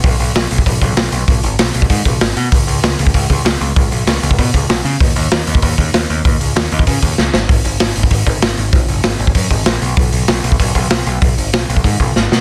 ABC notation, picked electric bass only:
X:1
M:4/4
L:1/8
Q:1/4=193
K:Abdor
V:1 name="Picked electric bass" clef=bass
C,, C,, C,, C,, C,, C,, C,, C,, | C,, A,,, C,, C,, A,, C,, A,,, C, | ^C,, C,, C,, C,, C,, C,, C,, C,, | ^C,, =B,,, C,, C,, =B,, C,, B,,, ^C, |
E,, E,, z E,, E,, E,, E,, E,, | E,, D,, E,, E,, D, E,, D,, A,,, | A,,, A,,, A,,, A,,, A,,, A,,, A,,, A,,, | A,,, G,,, A,,, A,,, G,, A,,, B,,, C,, |
C,, C,, C,, C,, C,, C,, C,, C,, | C,, A,,, C,, C,, A,, C,, A,,, C, |]